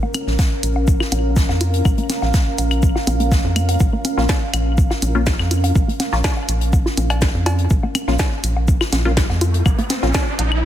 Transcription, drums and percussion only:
0.03 low woodblock soft
0.14 closed hi-hat medium
0.14 claves medium
0.14 shaker medium
0.27 snare soft
0.39 kick loud
0.39 snare loud
0.39 closed hi-hat soft
0.39 low woodblock soft
0.39 shaker medium
0.63 closed hi-hat medium
0.63 shaker medium
0.76 low woodblock soft
0.88 kick loud
0.88 shaker medium
1.00 snare medium
1.00 claves medium
1.12 closed hi-hat medium
1.12 low woodblock soft
1.12 shaker medium
1.36 kick loud
1.36 snare loud
1.36 shaker medium
1.49 snare soft
1.49 low woodblock soft
1.61 closed hi-hat medium
1.61 shaker medium
1.74 closed hi-hat soft
1.85 kick loud
1.85 claves medium
1.85 low woodblock soft
1.85 shaker medium
1.98 closed hi-hat soft
2.10 snare medium
2.10 closed hi-hat medium
2.10 shaker medium
2.22 snare soft
2.22 low woodblock soft
2.34 kick loud
2.34 snare loud
2.34 closed hi-hat soft
2.34 shaker medium
2.58 closed hi-hat medium
2.58 low woodblock soft
2.58 shaker medium
2.71 closed hi-hat soft
2.71 claves medium
2.83 kick loud
2.83 shaker medium
2.96 snare soft
2.96 low woodblock soft
3.07 closed hi-hat medium
3.07 shaker medium
3.20 closed hi-hat soft
3.32 kick loud
3.32 snare loud
3.32 low woodblock soft
3.32 shaker medium
3.56 closed hi-hat medium
3.56 claves medium
3.56 shaker medium
3.69 closed hi-hat soft
3.69 low woodblock soft
3.80 kick loud
3.80 low woodblock soft
3.80 shaker medium
4.05 closed hi-hat medium
4.05 shaker medium
4.18 snare soft
4.18 low woodblock soft
4.29 kick loud
4.29 snare loud
4.29 snare medium
4.29 closed hi-hat soft
4.29 cowbell medium
4.29 shaker medium
4.54 closed hi-hat medium
4.54 claves medium
4.54 low woodblock soft
4.54 shaker medium
4.78 kick loud
4.78 shaker medium
4.90 snare medium
4.90 low woodblock soft
5.02 closed hi-hat medium
5.02 shaker medium
5.26 kick loud
5.26 snare loud
5.26 snare medium
5.26 low woodblock soft
5.26 shaker medium
5.39 snare soft
5.39 claves medium
5.51 closed hi-hat medium
5.51 shaker medium
5.64 closed hi-hat soft
5.64 low woodblock soft
5.75 kick loud
5.75 shaker medium
5.89 closed hi-hat soft
6.00 snare medium
6.00 closed hi-hat medium
6.00 low woodblock soft
6.00 shaker medium
6.12 snare soft
6.24 kick loud
6.24 snare loud
6.24 snare medium
6.24 closed hi-hat soft
6.24 cowbell medium
6.24 claves medium
6.24 shaker medium
6.37 low woodblock soft
6.49 closed hi-hat medium
6.49 shaker medium
6.61 closed hi-hat soft
6.73 kick loud
6.73 low woodblock soft
6.73 shaker medium
6.86 snare soft
6.97 closed hi-hat medium
6.97 shaker medium
7.10 closed hi-hat soft
7.10 cowbell medium
7.10 claves medium
7.10 low woodblock soft
7.21 kick loud
7.21 snare loud
7.21 snare medium
7.21 shaker medium
7.46 closed hi-hat medium
7.46 cowbell medium
7.46 low woodblock soft
7.46 shaker medium
7.58 closed hi-hat soft
7.70 kick loud
7.70 shaker medium
7.83 low woodblock soft
7.95 closed hi-hat medium
7.95 claves medium
7.95 shaker medium
8.08 snare soft
8.19 kick medium
8.19 snare loud
8.19 snare medium
8.19 closed hi-hat soft
8.19 cowbell medium
8.19 low woodblock soft
8.19 shaker medium
8.44 closed hi-hat medium
8.44 shaker medium
8.57 low woodblock soft
8.68 kick loud
8.68 shaker medium
8.81 snare medium
8.81 claves medium
8.92 snare loud
8.92 closed hi-hat medium
8.92 low woodblock soft
8.92 shaker medium
9.17 kick loud
9.17 snare medium
9.17 snare loud
9.17 shaker medium
9.30 snare soft
9.30 low woodblock soft
9.41 closed hi-hat medium
9.41 shaker medium
9.54 closed hi-hat soft
9.66 kick loud
9.66 claves medium
9.66 low woodblock soft
9.66 shaker medium
9.78 closed hi-hat soft
9.89 snare medium
9.89 closed hi-hat medium
9.89 shaker medium
10.02 snare soft
10.02 low woodblock soft
10.14 kick loud
10.14 snare loud
10.14 snare medium
10.14 closed hi-hat soft
10.14 cowbell medium
10.14 shaker medium
10.39 closed hi-hat medium
10.39 low woodblock soft
10.52 claves medium

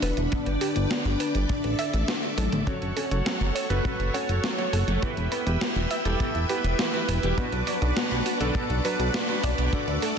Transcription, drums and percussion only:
0.02 open hi-hat medium
0.17 closed hi-hat soft
0.32 kick loud
0.32 closed hi-hat medium
0.46 closed hi-hat soft
0.61 open hi-hat medium
0.76 closed hi-hat medium
0.91 snare loud
0.91 closed hi-hat medium
1.05 closed hi-hat soft
1.20 open hi-hat medium
1.35 closed hi-hat medium
1.49 kick loud
1.49 closed hi-hat medium
1.64 closed hi-hat soft
1.79 open hi-hat medium
1.93 closed hi-hat soft
2.08 snare loud
2.08 closed hi-hat medium
2.23 closed hi-hat soft
2.38 open hi-hat medium
2.38 high tom medium
2.52 closed hi-hat medium
2.52 mid tom medium
2.67 kick loud
2.67 closed hi-hat medium
2.82 closed hi-hat soft
2.97 open hi-hat medium
3.11 closed hi-hat medium
3.26 snare loud
3.26 closed hi-hat medium
3.41 closed hi-hat soft
3.56 open hi-hat medium
3.70 closed hi-hat medium
3.85 kick loud
3.85 closed hi-hat medium
4.00 closed hi-hat soft
4.14 open hi-hat medium
4.29 closed hi-hat medium
4.44 snare loud
4.44 closed hi-hat medium
4.58 closed hi-hat soft
4.73 open hi-hat medium
4.88 closed hi-hat medium
5.02 kick loud
5.02 closed hi-hat medium
5.17 closed hi-hat soft
5.32 open hi-hat medium
5.47 closed hi-hat medium
5.61 snare loud
5.61 closed hi-hat medium
5.76 closed hi-hat soft
5.91 open hi-hat medium
6.05 closed hi-hat medium
6.20 kick loud
6.20 closed hi-hat medium
6.35 closed hi-hat soft
6.49 open hi-hat medium
6.64 closed hi-hat medium
6.79 snare loud
6.79 closed hi-hat medium
6.94 closed hi-hat soft
7.09 open hi-hat medium
7.23 closed hi-hat medium
7.38 kick loud
7.38 closed hi-hat medium
7.52 closed hi-hat soft
7.67 open hi-hat medium
7.82 closed hi-hat soft
7.97 snare loud
7.97 closed hi-hat medium
8.11 closed hi-hat soft
8.26 open hi-hat medium
8.41 closed hi-hat medium
8.55 kick loud
8.55 closed hi-hat medium
8.70 closed hi-hat soft
8.85 open hi-hat medium
9.00 closed hi-hat medium
9.14 snare loud
9.14 closed hi-hat medium
9.29 closed hi-hat soft
9.43 open hi-hat medium
9.58 closed hi-hat medium
9.73 kick loud
9.73 closed hi-hat medium
9.88 closed hi-hat soft
10.02 open hi-hat medium

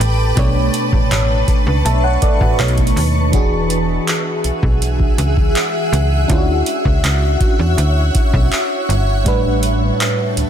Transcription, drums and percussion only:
0.01 closed hi-hat medium
0.37 kick loud
0.37 closed hi-hat medium
0.74 closed hi-hat medium
0.92 kick medium
1.11 clap loud
1.11 closed hi-hat medium
1.48 kick loud
1.48 closed hi-hat medium
1.86 closed hi-hat medium
2.22 kick medium
2.22 closed hi-hat medium
2.41 kick medium
2.59 clap loud
2.59 closed hi-hat soft
2.68 closed hi-hat soft
2.78 kick medium
2.78 closed hi-hat medium
2.87 closed hi-hat medium
2.97 open hi-hat medium
3.33 kick loud
3.33 closed hi-hat medium
3.70 closed hi-hat medium
4.08 clap loud
4.08 closed hi-hat medium
4.44 closed hi-hat medium
4.63 kick loud
4.82 closed hi-hat medium
5.00 kick medium
5.18 closed hi-hat medium
5.37 kick medium
5.55 clap loud
5.55 closed hi-hat medium
5.93 closed hi-hat medium
6.30 kick loud
6.30 closed hi-hat medium
6.66 closed hi-hat medium
6.85 kick medium
7.04 clap loud
7.04 closed hi-hat medium
7.40 kick loud
7.40 closed hi-hat medium
7.78 closed hi-hat medium
8.15 kick medium
8.15 closed hi-hat medium
8.33 kick medium
8.52 clap loud
8.52 closed hi-hat medium
8.90 closed hi-hat medium
9.26 kick loud
9.26 closed hi-hat medium
9.63 closed hi-hat medium
10.00 clap loud
10.00 closed hi-hat medium
10.37 closed hi-hat medium

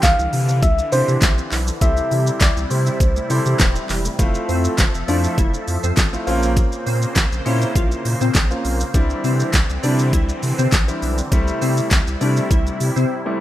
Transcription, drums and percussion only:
0.03 kick loud
0.03 snare medium
0.03 clap loud
0.03 closed hi-hat medium
0.03 shaker medium
0.19 shaker soft
0.33 open hi-hat medium
0.33 shaker medium
0.48 shaker medium
0.63 kick loud
0.63 closed hi-hat medium
0.63 shaker medium
0.79 shaker medium
0.92 open hi-hat medium
0.92 shaker medium
1.08 shaker medium
1.22 kick loud
1.22 snare medium
1.22 clap medium
1.22 clap loud
1.22 closed hi-hat medium
1.22 shaker medium
1.38 shaker medium
1.52 clap medium
1.52 open hi-hat medium
1.52 shaker medium
1.67 shaker medium
1.81 kick loud
1.81 closed hi-hat medium
1.81 shaker medium
1.97 shaker medium
2.11 open hi-hat medium
2.11 shaker medium
2.27 shaker medium
2.41 kick loud
2.41 snare medium
2.41 clap medium
2.41 clap loud
2.41 closed hi-hat medium
2.41 shaker medium
2.57 shaker soft
2.71 open hi-hat medium
2.71 shaker medium
2.86 shaker medium
3.00 kick loud
3.00 closed hi-hat medium
3.00 shaker medium
3.16 shaker medium
3.30 open hi-hat medium
3.30 shaker medium
3.46 shaker medium
3.59 kick loud
3.59 snare loud
3.59 clap medium
3.59 clap loud
3.59 closed hi-hat medium
3.59 shaker medium
3.76 shaker medium
3.89 clap medium
3.89 open hi-hat medium
3.89 shaker medium
4.05 shaker medium
4.19 kick loud
4.19 closed hi-hat medium
4.19 shaker medium
4.35 shaker medium
4.49 open hi-hat medium
4.49 shaker medium
4.64 shaker medium
4.78 kick loud
4.78 snare medium
4.78 clap loud
4.78 closed hi-hat medium
4.78 shaker medium
4.95 shaker soft
5.08 open hi-hat medium
5.08 shaker medium
5.24 shaker medium
5.38 kick loud
5.38 closed hi-hat medium
5.38 shaker medium
5.54 shaker medium
5.68 open hi-hat medium
5.68 shaker medium
5.83 shaker medium
5.97 kick loud
5.97 snare medium
5.97 clap medium
5.97 clap loud
5.97 closed hi-hat medium
5.97 shaker medium
6.13 shaker medium
6.27 open hi-hat medium
6.27 shaker medium
6.43 shaker medium
6.57 kick loud
6.57 closed hi-hat medium
6.57 shaker medium
6.72 shaker medium
6.87 open hi-hat medium
6.87 shaker medium
7.02 shaker medium
7.16 kick loud
7.16 snare medium
7.16 clap medium
7.16 clap loud
7.16 closed hi-hat medium
7.16 shaker medium
7.32 shaker soft
7.46 open hi-hat medium
7.46 shaker medium
7.62 shaker medium
7.76 kick loud
7.76 closed hi-hat medium
7.76 shaker medium
7.92 shaker medium
8.05 open hi-hat medium
8.05 shaker medium
8.21 shaker medium
8.35 kick loud
8.35 snare medium
8.35 clap medium
8.35 clap loud
8.35 closed hi-hat medium
8.35 shaker medium
8.51 shaker medium
8.65 open hi-hat medium
8.65 shaker medium
8.80 shaker medium
8.94 kick loud
8.94 closed hi-hat medium
8.94 shaker medium
9.10 shaker medium
9.24 open hi-hat medium
9.24 shaker medium
9.40 shaker medium
9.53 kick loud
9.53 snare medium
9.53 clap loud
9.53 closed hi-hat medium
9.53 shaker medium
9.70 shaker soft
9.83 open hi-hat medium
9.83 shaker medium
9.99 shaker medium
10.13 kick loud
10.13 closed hi-hat medium
10.13 shaker medium
10.29 shaker medium
10.43 open hi-hat medium
10.43 shaker medium
10.59 shaker medium
10.72 kick loud
10.72 snare medium
10.72 clap medium
10.72 clap loud
10.72 closed hi-hat medium
10.72 shaker medium
10.88 shaker medium
11.02 open hi-hat medium
11.02 shaker medium
11.18 shaker medium
11.32 kick loud
11.32 closed hi-hat medium
11.32 shaker medium
11.47 shaker medium
11.62 open hi-hat medium
11.62 shaker medium
11.77 shaker medium
11.91 kick loud
11.91 snare medium
11.91 clap medium
11.91 clap loud
11.91 closed hi-hat medium
11.91 shaker medium
12.07 shaker medium
12.21 open hi-hat medium
12.21 shaker medium
12.37 shaker medium
12.51 kick loud
12.51 closed hi-hat medium
12.51 shaker medium
12.67 shaker medium
12.80 open hi-hat medium
12.80 shaker medium
12.96 shaker medium

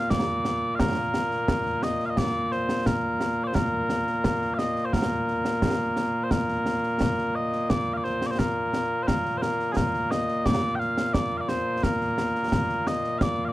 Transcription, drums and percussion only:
0.10 concert bass drum medium
0.10 snare loud
0.45 snare medium
0.80 concert bass drum medium
0.80 snare loud
0.97 snare soft
1.14 snare medium
1.31 snare soft
1.48 concert bass drum medium
1.48 snare loud
1.66 snare soft
1.83 snare medium
2.00 snare soft
2.17 concert bass drum medium
2.17 snare medium
2.52 snare soft
2.69 snare medium
2.86 concert bass drum medium
2.86 snare loud
3.21 snare medium
3.55 concert bass drum medium
3.55 snare medium
3.90 snare medium
4.07 snare soft
4.24 concert bass drum medium
4.24 snare loud
4.42 snare soft
4.59 snare medium
4.76 snare soft
4.93 concert bass drum medium
4.93 snare medium
5.28 snare soft
5.45 snare medium
5.62 concert bass drum medium
5.62 snare loud
5.96 snare medium
6.31 concert bass drum medium
6.31 snare medium
6.48 snare soft
6.66 snare medium
6.84 snare soft
7.01 concert bass drum medium
7.01 snare loud
7.18 snare soft
7.53 snare soft
7.70 concert bass drum medium
7.70 snare loud
8.04 snare soft
8.22 snare medium
8.39 concert bass drum medium
8.39 snare loud
8.73 snare medium
9.08 concert bass drum medium
9.08 snare medium
9.25 snare soft
9.42 snare medium
9.60 snare soft
9.77 concert bass drum medium
9.77 snare loud
9.94 snare soft
10.12 snare medium
10.28 snare soft
10.46 concert bass drum medium
10.46 snare loud
10.81 snare soft
10.97 snare medium
11.14 concert bass drum medium
11.14 snare loud
11.49 snare medium
11.83 concert bass drum medium
11.83 snare medium
12.01 snare soft
12.18 snare medium
12.35 snare soft
12.52 concert bass drum medium
12.52 snare loud
12.69 snare soft
12.87 snare medium
13.04 snare soft
13.21 concert bass drum medium
13.21 snare loud

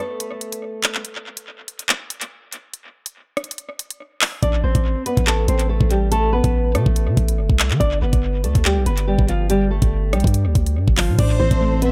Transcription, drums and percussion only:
0.20 closed hi-hat medium
0.41 closed hi-hat medium
0.52 closed hi-hat medium
0.84 clap loud
0.84 closed hi-hat medium
0.95 clap medium
1.05 closed hi-hat medium
1.37 closed hi-hat medium
1.68 closed hi-hat medium
1.79 closed hi-hat medium
1.89 clap loud
2.10 closed hi-hat medium
2.21 closed hi-hat medium
2.52 closed hi-hat medium
2.74 closed hi-hat medium
3.06 closed hi-hat medium
3.37 cross-stick medium
3.37 closed hi-hat soft
3.44 closed hi-hat medium
3.51 closed hi-hat medium
3.58 closed hi-hat medium
3.79 closed hi-hat medium
3.90 closed hi-hat medium
4.21 clap loud
4.21 open hi-hat medium
4.43 kick loud
4.43 closed hi-hat medium
4.75 kick medium
4.75 closed hi-hat medium
5.06 closed hi-hat medium
5.17 kick loud
5.17 closed hi-hat medium
5.27 clap loud
5.48 closed hi-hat medium
5.59 closed hi-hat medium
5.81 kick medium
5.91 closed hi-hat medium
6.12 closed hi-hat medium
6.44 kick medium
6.44 closed hi-hat medium
6.75 cross-stick medium
6.75 closed hi-hat medium
6.86 kick loud
6.96 closed hi-hat medium
7.17 kick medium
7.17 closed hi-hat medium
7.28 closed hi-hat medium
7.50 kick loud
7.59 clap loud
7.59 closed hi-hat medium
7.71 clap medium
7.81 kick loud
7.81 closed hi-hat medium
8.13 kick medium
8.13 closed hi-hat medium
8.44 closed hi-hat medium
8.55 kick loud
8.55 closed hi-hat medium
8.65 clap loud
8.86 closed hi-hat medium
8.97 closed hi-hat medium
9.19 kick loud
9.29 closed hi-hat medium
9.50 closed hi-hat medium
9.82 kick medium
9.82 closed hi-hat medium
10.13 cross-stick medium
10.13 closed hi-hat soft
10.20 closed hi-hat medium
10.24 kick loud
10.24 closed hi-hat medium
10.34 closed hi-hat medium
10.55 kick medium
10.55 closed hi-hat medium
10.66 closed hi-hat medium
10.88 kick medium
10.97 clap loud
10.97 open hi-hat medium
11.19 kick loud
11.19 closed hi-hat medium
11.19 crash loud
11.51 kick medium
11.51 closed hi-hat medium
11.82 closed hi-hat medium

